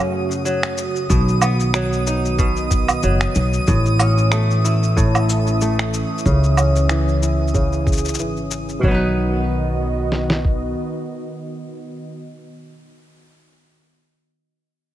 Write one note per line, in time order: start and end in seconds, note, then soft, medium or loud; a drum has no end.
0.00 0.85 F#2 loud
0.00 1.14 F#2 medium
0.00 1.09 C#3 medium
0.00 0.45 F#3 medium
0.00 1.09 A3 medium
0.00 1.17 A3 medium
0.00 1.23 C#4 medium
0.00 4.71 F#4 medium
0.00 2.02 C#5 medium
0.00 8.85 D#6 medium
0.31 cabasa soft
0.45 1.74 F#3 medium
0.45 cabasa soft
0.63 finger snap medium
0.63 cabasa soft
0.78 cabasa medium
0.96 cabasa soft
1.10 2.95 B1 loud
1.10 2.38 B2 medium
1.10 3.68 D#3 medium
1.10 kick loud
1.10 cabasa soft
1.28 cabasa soft
1.42 3.75 B3 medium
1.42 cabasa medium
1.42 low woodblock medium
1.60 4.71 B3 medium
1.60 cabasa soft
1.74 3.02 F#3 medium
1.74 finger snap medium
1.74 cabasa soft
1.93 cabasa soft
2.07 3.75 D#4 medium
2.07 cabasa medium
2.25 3.67 D#5 medium
2.25 cabasa soft
2.39 3.72 B2 medium
2.39 kick loud
2.39 cabasa soft
2.56 cabasa soft
2.71 kick medium
2.71 cabasa medium
2.88 cabasa soft
2.88 low woodblock medium
3.03 3.25 F#1 medium
3.03 3.72 F#3 medium
3.03 cabasa soft
3.21 finger snap medium
3.21 cabasa soft
3.35 3.57 B1 medium
3.35 cabasa medium
3.53 cabasa soft
3.67 6.01 A1 medium
3.67 4.95 A2 medium
3.67 8.83 E3 medium
3.67 kick loud
3.67 cabasa soft
3.86 cabasa soft
3.95 8.83 C#4 medium
3.99 6.33 C#4 medium
3.99 cabasa medium
3.99 low woodblock medium
4.18 cabasa soft
4.28 8.83 E5 medium
4.28 finger snap medium
4.28 cabasa soft
4.33 5.61 A3 medium
4.50 cabasa soft
4.64 6.33 E4 medium
4.64 cabasa medium
4.83 6.25 A4 medium
4.83 cabasa soft
4.97 6.30 A2 medium
4.97 kick loud
4.97 cabasa soft
5.15 cabasa soft
5.15 low woodblock medium
5.29 cabasa medium
5.47 cabasa soft
5.61 7.61 A3 medium
5.61 cabasa soft
5.79 finger snap medium
5.79 cabasa soft
5.94 cabasa medium
6.18 cabasa soft
6.25 8.19 C#2 medium
6.25 7.53 C#3 medium
6.25 kick loud
6.25 cabasa soft
6.43 cabasa soft
6.57 8.91 C#4 medium
6.57 cabasa medium
6.57 low woodblock medium
6.76 cabasa soft
6.89 7.59 E3 medium
6.89 finger snap medium
6.89 cabasa soft
7.08 cabasa soft
7.22 8.91 E4 medium
7.22 cabasa medium
7.42 8.83 G#4 medium
7.48 cabasa soft
7.54 8.88 C#3 medium
7.54 kick medium
7.54 cabasa soft
7.72 cabasa soft
7.87 kick medium
7.87 cabasa soft
7.92 cabasa soft
7.96 cabasa soft
7.98 cabasa soft
8.05 cabasa soft
8.08 cabasa medium
8.14 cabasa medium
8.19 8.75 G#1 medium
8.19 8.88 E3 medium
8.19 cabasa soft
8.37 cabasa soft
8.51 cabasa medium
8.69 cabasa soft
8.79 12.89 B2 medium
8.83 10.73 B1 medium
8.83 12.18 D#3 medium
8.83 12.92 F#3 medium
8.83 kick loud
8.88 12.94 B3 medium
8.88 12.95 D#4 medium
8.94 12.18 B3 medium
8.94 12.97 B4 medium
9.05 12.18 F#4 medium
9.14 12.18 D#5 medium
10.12 snare soft
10.30 snare medium
10.45 kick medium